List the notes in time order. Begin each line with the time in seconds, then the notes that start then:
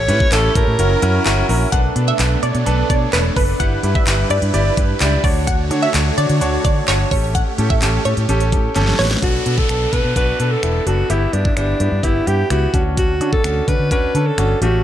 Already playing: A3 G4 C#5
0.08 A2 C#4 E4 G4 B4, closed hi-hat
0.20 kick
0.32 A1 C#4 E4 G4 A4, clap, closed hi-hat
0.55 A2 C#4 E4 G4 A4 A#4, kick, closed hi-hat
0.67 A2
0.79 F#1 F#3 C#4 E4 F#4 A#4, closed hi-hat
1.02 F#2 C#4 E4 F#4 A#4, closed hi-hat
1.26 G1 C#4 E4 F#4 A#4, clap, closed hi-hat
1.49 A#1 C#4 E4 F#4 A#4, open hi-hat
1.72 B1 A3 B3 D4 A4 B4 F#5, kick, closed hi-hat
1.96 B2 D4 A4 B4, closed hi-hat
2.08 E5
2.19 B1 D4 A4 B4, clap, closed hi-hat
2.43 B2 D4 A4 C#5 D5, closed hi-hat
2.55 B2, closed hi-hat
2.66 B1 D4 A4 B4, closed hi-hat
2.89 B2 D4 A4 C#5 D5, kick, closed hi-hat
3.13 E1 D4 A4 B4 C#5, clap, closed hi-hat
3.36 F#1 D4 A4 B4, kick, open hi-hat
3.60 G1 G3 E4 G4 B4 F#5, kick, closed hi-hat
3.83 G2 E4 G4 B4, closed hi-hat
3.95 E5, kick
4.07 G1 E4 G4 B4, clap, closed hi-hat
4.30 G2 E4 G4 B4 D5, closed hi-hat
4.42 G2, closed hi-hat
4.53 G1 E4 G4 D5, closed hi-hat
4.77 G2 E4 G4 B4, kick, closed hi-hat
5.00 C#2 E4 G4 D5, clap, closed hi-hat
5.24 D2 D3 A3 D4 F#4 C#5 D5, kick, open hi-hat
5.47 F#5, kick, closed hi-hat
5.71 D3 D4 F#4 C#5, closed hi-hat
5.83 E5
5.94 D2 D4 F#4 C#5, clap, closed hi-hat
6.17 D3 D4 F#4 C#5 D5, closed hi-hat
6.29 D3, closed hi-hat
6.41 D2 D4 F#4 C#5, closed hi-hat
6.64 D3 D4 F#4 C#5 D5, kick, closed hi-hat
6.88 G1 D4 F#4 C#5, clap, closed hi-hat
7.11 A1 A3 C#4 G4 A4 C#5, kick, open hi-hat
7.35 F#5, kick, closed hi-hat
7.58 A2 C#4 G4 A4, closed hi-hat
7.70 E5, kick
7.82 A1 C#4 G4 A4, clap, closed hi-hat
8.05 A2 C#4 G4 A4 C#5, closed hi-hat
8.17 A2, closed hi-hat
8.29 A1 C#4 G4 A4, closed hi-hat
8.40 closed hi-hat
8.52 A2 C#4 G4 A4, kick, closed hi-hat
8.75 G1 C#4 G4 A4, snare, closed hi-hat
8.82 snare
8.87 snare
8.93 snare
8.99 A1 G4 B4 C#5, snare, open hi-hat
9.05 snare
9.11 snare
9.17 snare
9.22 B1 B3 D4 F#4 A4, kick, closed hi-hat, downlifter
9.46 B2 B3 D4 A4, closed hi-hat
9.58 A4, kick
9.69 B1 B3 D4 A4, finger snap, closed hi-hat
9.93 B2 B3 D4 A4 B4, kick, closed hi-hat
10.04 B2
10.16 B1 B3 D4 F#4 B4, kick, closed hi-hat
10.40 B2 B3 D4 A4, closed hi-hat
10.52 A4
10.63 E1 B3 D4 E4, finger snap, closed hi-hat
10.86 F#1 B3 D4 F#4 A4, closed hi-hat
11.10 G1 B3 E4 G4, closed hi-hat
11.33 G2 B3 D4 E4 G4, closed hi-hat
11.45 kick
11.57 G1 B3 D4 E4 G4, finger snap, closed hi-hat
11.80 G2 B3 E4 G4, closed hi-hat
11.92 G2
12.03 G1 B3 E4 G4, kick, closed hi-hat
12.27 G2 B3 E4 G4, closed hi-hat
12.50 C#2 B3 E4 F#4 G4, finger snap, closed hi-hat
12.74 D2 C#4 D4 F#4, kick, closed hi-hat
12.97 F#4, kick, closed hi-hat
13.21 D3 C#4 D4 F#4, closed hi-hat
13.33 A4, kick
13.44 D2 C#4 D4 F#4, finger snap, closed hi-hat
13.67 D3 C#4 D4 F#4 B4, kick, closed hi-hat
13.79 D3
13.91 D2 C#4 D4 F#4 B4, kick, closed hi-hat
14.15 D3 C#4 D4 A4, closed hi-hat
14.27 A4
14.38 G1 C#4 D4 F#4, finger snap, closed hi-hat
14.61 A1 A3 C#4 F#4 G4, closed hi-hat